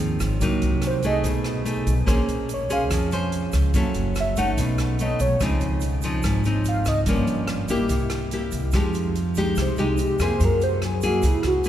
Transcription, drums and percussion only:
0.20 kick, cross-stick, closed hi-hat, shaker
0.41 kick, closed hi-hat, shaker
0.62 closed hi-hat, shaker
0.82 cross-stick, closed hi-hat, shaker
1.03 kick, closed hi-hat, shaker
1.24 kick, closed hi-hat, shaker
1.44 cross-stick, closed hi-hat, shaker
1.66 closed hi-hat, shaker
1.87 kick, closed hi-hat, shaker
2.07 kick, cross-stick, closed hi-hat, shaker
2.29 closed hi-hat, shaker
2.49 closed hi-hat, shaker
2.70 kick, closed hi-hat, shaker
2.91 kick, cross-stick, closed hi-hat, shaker
3.11 closed hi-hat, shaker
3.32 closed hi-hat
3.52 kick, cross-stick, closed hi-hat, shaker
3.74 kick, closed hi-hat, shaker
3.94 closed hi-hat, shaker
4.15 cross-stick, closed hi-hat, shaker
4.36 kick, closed hi-hat, shaker
4.57 kick, closed hi-hat, shaker
4.78 cross-stick, closed hi-hat, shaker
4.99 closed hi-hat, shaker
5.20 kick, closed hi-hat, shaker
5.40 kick, cross-stick, closed hi-hat, shaker
5.60 closed hi-hat, shaker
5.80 closed hi-hat, shaker
6.02 kick, closed hi-hat, shaker
6.22 kick, cross-stick, closed hi-hat, shaker
6.44 closed hi-hat, shaker
6.64 closed hi-hat, shaker
6.85 kick, cross-stick, closed hi-hat, shaker
7.06 kick, closed hi-hat, shaker
7.27 closed hi-hat, shaker
7.47 cross-stick, closed hi-hat
7.68 kick, closed hi-hat, shaker
7.89 kick, closed hi-hat, shaker
8.10 cross-stick, closed hi-hat, shaker
8.31 closed hi-hat
8.51 kick, closed hi-hat, shaker
8.72 kick, cross-stick, closed hi-hat, shaker
8.93 closed hi-hat, shaker
9.15 closed hi-hat
9.35 kick, closed hi-hat, shaker
9.56 kick, cross-stick, closed hi-hat, shaker
9.76 closed hi-hat, shaker
9.97 closed hi-hat, shaker
10.19 kick, cross-stick, closed hi-hat, shaker
10.40 kick, closed hi-hat, shaker
10.60 closed hi-hat, shaker
10.82 cross-stick, closed hi-hat
11.01 kick, closed hi-hat, shaker
11.22 kick, closed hi-hat, shaker
11.43 cross-stick, closed hi-hat, shaker
11.64 closed hi-hat, shaker

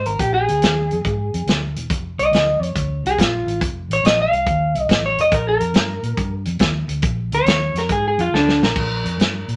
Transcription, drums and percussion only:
0.06 closed hi-hat
0.19 kick, closed hi-hat
0.48 closed hi-hat
0.62 snare, closed hi-hat
0.91 closed hi-hat
1.04 kick, closed hi-hat
1.34 closed hi-hat
1.47 snare, closed hi-hat
1.76 closed hi-hat
1.90 kick, closed hi-hat
2.19 closed hi-hat
2.33 snare, closed hi-hat
2.63 closed hi-hat
2.76 kick, closed hi-hat
3.06 closed hi-hat
3.19 kick, snare, closed hi-hat
3.48 closed hi-hat
3.61 kick, closed hi-hat
3.91 closed hi-hat
4.05 snare, closed hi-hat
4.33 closed hi-hat
4.46 kick, closed hi-hat
4.75 closed hi-hat
4.89 kick, snare, closed hi-hat
5.18 closed hi-hat
5.31 kick, closed hi-hat
5.60 closed hi-hat
5.74 snare, closed hi-hat
6.03 closed hi-hat
6.17 kick, closed hi-hat
6.45 closed hi-hat
6.59 kick, snare, closed hi-hat
6.89 closed hi-hat
7.02 kick, closed hi-hat
7.32 closed hi-hat
7.46 snare, closed hi-hat
7.75 snare, closed hi-hat
7.89 kick, closed hi-hat
8.19 closed hi-hat
8.35 snare
8.48 snare
8.63 snare
8.76 kick, crash
9.05 closed hi-hat
9.19 snare, closed hi-hat
9.49 closed hi-hat

